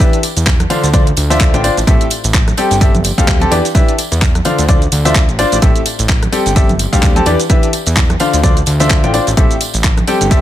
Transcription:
0.00 grand piano E3 D4 G4 B4 E5, kick, closed hi-hat, tambourine, shaker
0.13 closed hi-hat, shaker
0.23 open hi-hat, tambourine
0.37 analog synth bass E2, closed hi-hat, tambourine, shaker
0.47 kick, clap, closed hi-hat, shaker
0.60 cross-stick, closed hi-hat, high conga, shaker
0.70 grand piano D3 D4 F4 C5 F5, open hi-hat, tambourine
0.83 analog synth bass D2, closed hi-hat, tambourine, shaker
0.93 grand piano D3 D4 F4 C5 D5, kick, closed hi-hat, tambourine, shaker
1.07 closed hi-hat, shaker
1.17 analog synth bass D2, open hi-hat, tambourine
1.30 grand piano D3 D4 F4 C5 E5, closed hi-hat, tambourine, shaker
1.40 kick, clap, closed hi-hat, shaker
1.54 analog synth bass A1, grand piano D3 D4 F4 C5 G5, closed hi-hat, shaker
1.64 grand piano D4 F4 C5 D5, open hi-hat, tambourine
1.77 analog synth bass A1, closed hi-hat, tambourine, shaker
1.87 analog synth bass A1, grand piano A2 C4 G4 A4 E5, kick, closed hi-hat, shaker
2.01 closed hi-hat, shaker
2.10 open hi-hat, tambourine
2.24 analog synth bass A1, closed hi-hat, tambourine, shaker
2.34 kick, clap, closed hi-hat, shaker
2.48 cross-stick, closed hi-hat, high conga, shaker
2.57 grand piano G3 C4 G4 A4 G5, open hi-hat, tambourine
2.71 analog synth bass G1, closed hi-hat, tambourine, shaker
2.81 grand piano G3 C4 G4 A4 E5, kick, closed hi-hat, tambourine, shaker
2.95 closed hi-hat, high conga, shaker
3.04 open hi-hat, tambourine
3.18 analog synth bass D2, grand piano G3 C4 G4 A4 F5, kick, closed hi-hat, tambourine, shaker
3.28 kick, clap, closed hi-hat, shaker
3.40 grand piano C4 G4 A4 A5, closed hi-hat, high conga, shaker
3.51 analog synth bass E2, grand piano E3 D4 G4 B4 D5, open hi-hat, tambourine
3.65 closed hi-hat, tambourine, shaker
3.75 grand piano E3 D4 G4 B4 E5, kick, closed hi-hat, shaker
3.88 closed hi-hat, shaker
3.98 open hi-hat, tambourine
4.12 analog synth bass E2, closed hi-hat, tambourine, shaker
4.22 kick, clap, closed hi-hat, shaker
4.35 cross-stick, closed hi-hat, high conga, shaker
4.45 grand piano D3 D4 F4 C5 F5, open hi-hat, tambourine
4.58 analog synth bass D2, closed hi-hat, tambourine, shaker
4.68 grand piano D3 D4 F4 C5 D5, kick, closed hi-hat, tambourine, shaker
4.82 closed hi-hat, shaker
4.92 analog synth bass D2, open hi-hat, tambourine
5.05 grand piano D3 D4 F4 C5 E5, closed hi-hat, tambourine, shaker
5.15 kick, clap, closed hi-hat, shaker
5.29 analog synth bass A1, closed hi-hat, shaker
5.39 grand piano D4 F4 C5 D5, open hi-hat, tambourine
5.52 analog synth bass A1, closed hi-hat, tambourine, shaker
5.62 analog synth bass A1, grand piano A2 C4 G4 A4 E5, kick, closed hi-hat, tambourine, shaker
5.76 closed hi-hat, shaker
5.86 open hi-hat, tambourine
5.99 analog synth bass A1, closed hi-hat, tambourine, shaker
6.09 kick, clap, closed hi-hat, shaker
6.23 cross-stick, closed hi-hat, high conga, shaker
6.32 grand piano G3 C4 G4 A4 G5, open hi-hat, tambourine
6.46 analog synth bass G1, closed hi-hat, tambourine, shaker
6.56 grand piano G3 C4 G4 A4 E5, kick, closed hi-hat, tambourine, shaker
6.69 closed hi-hat, high conga, shaker
6.79 open hi-hat, tambourine
6.93 analog synth bass D2, grand piano G3 C4 G4 A4 F5, kick, closed hi-hat, tambourine, shaker
7.03 kick, clap, closed hi-hat, tambourine, shaker
7.16 grand piano C4 G4 A4 A5, closed hi-hat, high conga, shaker
7.26 analog synth bass E2, grand piano E3 D4 G4 B4 D5, open hi-hat, tambourine
7.40 closed hi-hat, tambourine, shaker
7.50 grand piano E3 D4 G4 B4 E5, kick, closed hi-hat, shaker
7.63 closed hi-hat, shaker
7.73 open hi-hat, tambourine
7.86 analog synth bass E2, closed hi-hat, tambourine, shaker
7.97 kick, clap, closed hi-hat, tambourine, shaker
8.09 cross-stick, closed hi-hat, high conga, shaker
8.20 grand piano D3 D4 F4 C5 F5, open hi-hat, tambourine
8.33 analog synth bass D2, closed hi-hat, tambourine, shaker
8.43 grand piano D3 D4 F4 C5 D5, kick, closed hi-hat, tambourine, shaker
8.57 closed hi-hat, shaker
8.66 analog synth bass D2, open hi-hat, tambourine
8.80 grand piano D3 D4 F4 C5 E5, closed hi-hat, tambourine, shaker
8.90 kick, clap, closed hi-hat, shaker
9.04 analog synth bass A1, grand piano D3 D4 F4 C5 G5, closed hi-hat, shaker
9.14 grand piano D4 F4 C5 D5, open hi-hat, tambourine
9.27 analog synth bass A1, closed hi-hat, tambourine, shaker
9.37 analog synth bass A1, grand piano A2 C4 G4 A4 E5, kick, closed hi-hat, tambourine, shaker
9.51 closed hi-hat, shaker
9.61 open hi-hat, tambourine
9.74 analog synth bass A1, closed hi-hat, tambourine, shaker
9.84 kick, clap, closed hi-hat, shaker
9.97 cross-stick, closed hi-hat, high conga, shaker
10.07 grand piano G3 C4 G4 A4 G5, open hi-hat, tambourine
10.21 analog synth bass G1, closed hi-hat, tambourine, shaker
10.31 grand piano G3 C4 G4 A4 E5, kick, closed hi-hat, tambourine, shaker

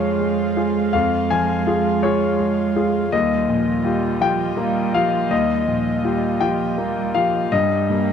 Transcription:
Already playing: grand piano F2 F3 F4 G#4 C5 C#5, cello G#3, string section G#3 F4 F5
0.20 grand piano G#3
0.57 grand piano F4 G#4
0.93 grand piano F2 F5
1.30 grand piano F3 G#5
1.67 grand piano F4 G#4
2.03 grand piano F4 G#4 C#5
2.39 grand piano G#3
2.76 grand piano F4 G#4
3.11 grand piano D#2 D#5, cello G3, string section G3 F4 D#5
3.48 grand piano A#2, cello F3
3.83 cello G3, grand piano F4 G4
4.20 cello F3, grand piano F4 G4 G5
4.56 cello G3, grand piano A#3
4.93 cello F3, grand piano F4 G4 F5
5.30 grand piano D#2 D#5, cello G3
5.66 grand piano A#2, cello F3
6.04 cello G3, grand piano F4 G4
6.41 cello F3, grand piano F4 G4 G5
6.78 cello G3, grand piano A#3
7.14 cello F3, grand piano F4 G4 F5
7.51 grand piano G2 D#5, cello G3, string section G3 C#4 G4
7.90 grand piano G3, cello A#3

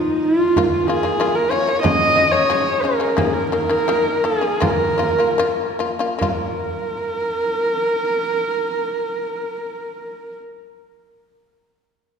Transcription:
Already playing: horsehead fiddle D#4
0.24 horsehead fiddle F4, frame drum
0.56 shamisen A#3 F4, frame drum
0.71 horsehead fiddle F4
0.87 shamisen A#3 F4, horsehead fiddle G#4, frame drum
1.03 shamisen A#3 F4
1.20 shamisen A#3 F4, frame drum
1.35 horsehead fiddle A#4
1.51 shamisen A#3 F4, horsehead fiddle C#5, frame drum
1.67 shamisen A#3 F4
1.83 shamisen C#3 G#3, horsehead fiddle D#5, frame drum
2.16 shamisen C#3 G#3, frame drum
2.32 shamisen C#3 G#3, horsehead fiddle C#5
2.50 shamisen C#3 G#3, frame drum
2.82 shamisen C#3 G#3, horsehead fiddle A#4, frame drum
3.00 shamisen C#3 G#3
3.16 shamisen D#3 A#3, horsehead fiddle G#4, frame drum
3.33 horsehead fiddle A#4
3.51 shamisen D#3 A#3, horsehead fiddle A#4, frame drum
3.69 shamisen D#3 A#3
3.88 shamisen D#3 A#3, frame drum
4.24 shamisen D#3 A#3, horsehead fiddle G#4, frame drum
4.41 shamisen D#3 A#3
4.60 shamisen A#3 F4, horsehead fiddle A#4, frame drum
4.98 shamisen A#3 F4, frame drum
5.18 shamisen A#3 F4
5.38 shamisen A#3 F4, frame drum
5.79 shamisen A#3 F4, frame drum
5.99 shamisen A#3 F4
6.19 shamisen A#3 F4, horsehead fiddle A#4, frame drum

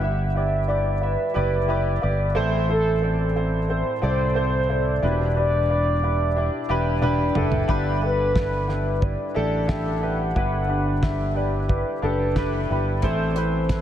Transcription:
Already playing: fingered electric bass G1, grand piano G2 D3 E4 G4 B4 D5 E5, soft synth lead F#5
0.02 grand piano E4 G4 B4 E5
0.35 grand piano E4 G4 B4 D5, soft synth lead E5
0.68 grand piano E4 G4 B4 D5, soft synth lead D5
1.01 grand piano E4 G4 B4 E5, soft synth lead B4
1.34 fingered electric bass F#1, grand piano E4 G4 B4 D5, soft synth lead B4
1.68 grand piano E4 G4 B4 D5
2.02 fingered electric bass G1, grand piano E4 G4 B4 D5
2.35 fingered electric bass A1, grand piano A2 E3 C4 E4 A4 C5
2.68 grand piano C4 E4 A4 C5, soft synth lead A4
3.02 grand piano C4 E4 A4 D5
3.35 grand piano C4 E4 A4 C5
3.69 grand piano C4 E4 A4 C5, soft synth lead C5
4.02 fingered electric bass C2, grand piano C4 E4 A4 D5
4.06 soft synth lead C5
4.35 grand piano C4 E4 A4 C5
4.69 grand piano C4 E4 A4 C5, soft synth lead D5
5.02 fingered electric bass E1, grand piano B2 D4 E4 G4 B4
5.36 grand piano D4 E4 G4 B4, soft synth lead D5
5.69 grand piano D4 E4 G4 B4
6.03 grand piano D4 E4 G4 B4
6.36 grand piano D4 E4 G4 D5
6.69 fingered electric bass E1, grand piano D4 E4 G4 B4
7.02 grand piano D4 E4 G4 B4, high tom
7.35 fingered electric bass F#1, grand piano D4 E4 G4 A4, mid tom
7.52 floor tom
7.68 fingered electric bass G1, grand piano G2 D3 D4 E4 G4 B4, kick
8.02 grand piano D4 E4 G4 A4, soft synth lead B4
8.34 grand piano D4 E4 G4 B4, kick, snare
8.68 grand piano D4 E4 G4 B4, snare
9.00 grand piano D4 E4 G4 B4, soft synth lead D5, kick
9.35 fingered electric bass A1, grand piano D4 E4 G4 A4, soft synth lead D5
9.67 grand piano D4 E4 G4 A4, soft synth lead E5, kick, snare
10.01 grand piano D4 E4 G4 B4, soft synth lead F#5
10.35 fingered electric bass G1, grand piano G2 D3 D4 E4 G4 B4, kick
10.68 grand piano D4 E4 G4 B4
11.02 grand piano D4 E4 G4 B4, soft synth lead E5, kick, snare
11.34 grand piano D4 E4 G4 B4, soft synth lead D5
11.68 grand piano D4 E4 G4 B4, soft synth lead B4, kick
12.02 fingered electric bass F#1, grand piano D4 E4 G4 A4, soft synth lead B4
12.36 grand piano D4 E4 G4 B4, kick, snare
12.70 fingered electric bass G1, grand piano D4 E4 G4 B4
13.02 fingered electric bass A1, grand piano A2 E3 C4 E4 A4 C5, kick, closed hi-hat
13.29 soft synth lead D5
13.36 grand piano C4 E4 A4 B4, soft synth lead C5, closed hi-hat
13.69 grand piano C4 E4 A4 B4, kick, snare, closed hi-hat

